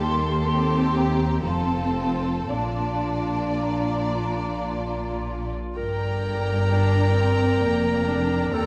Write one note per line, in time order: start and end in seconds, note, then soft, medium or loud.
0.00 1.42 D#2 medium
0.00 0.48 A#3 soft
0.00 0.48 G4 medium
0.00 0.44 A4 soft
0.00 0.93 C6 medium
0.46 1.45 C4 soft
0.46 1.45 G4 soft
0.46 0.95 A4 soft
0.95 1.45 G4 soft
0.95 1.47 A#5 medium
1.44 2.52 F1 soft
1.44 2.52 F2 soft
1.44 2.50 C4 soft
1.44 1.94 F4 soft
1.44 2.49 A4 soft
1.44 2.51 A5 medium
1.96 2.50 F4 soft
2.51 5.53 A#1 soft
2.51 5.53 A#2 soft
2.51 5.57 D4 soft
2.51 5.52 F4 soft
2.51 5.57 D5 soft
2.51 3.60 A5 medium
3.61 5.25 A#5 soft
4.69 5.78 F4 soft
5.77 7.58 G1 soft
5.77 7.57 G2 soft
5.77 8.55 A#4 medium
5.77 8.48 D5 soft
5.77 8.48 G5 soft
5.77 8.49 A#5 soft
6.70 7.13 D4 soft
7.17 7.62 C4 soft
7.60 8.52 F1 soft
7.60 8.52 F2 soft
7.60 8.07 A#3 medium
8.06 8.52 D4 soft
8.51 8.66 D#2 soft
8.51 8.66 C4 soft
8.51 8.66 A4 medium
8.51 8.66 D5 soft
8.51 8.66 G5 soft
8.51 8.66 A#5 soft